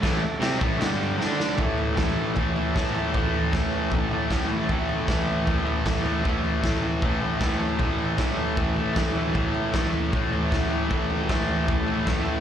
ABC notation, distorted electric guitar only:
X:1
M:4/4
L:1/8
Q:1/4=155
K:Amix
V:1 name="Distorted electric guitar" clef=bass
[A,,E,A,] z [=C,G,=C] [A,,E,A,] [G,,D,G,]2 [D,A,D]2 | [A,,E,A,]2 [A,,E,A,]2 [A,,E,A,] [E,A,] [A,,E,A,] [E,A,] | [A,,E,A,]2 [A,,E,A,]2 [A,,E,A,] [E,A,] [A,,E,A,] [E,A,] | [A,,E,A,]2 [A,,E,A,]2 [A,,E,A,] [E,A,] [A,,E,A,] [E,A,] |
[A,,E,A,]2 [A,,E,A,]2 [A,,E,A,] [E,A,] [A,,E,A,] [E,A,] | [A,,E,A,]2 [A,,E,A,]2 [A,,E,A,] [E,A,] [A,,E,A,] [E,A,] | [A,,E,A,]2 [A,,E,A,]2 [A,,E,A,] [E,A,] [A,,E,A,] [E,A,] | [A,,E,A,]2 [A,,E,A,]2 [A,,E,A,] [E,A,] [A,,E,A,] [E,A,] |]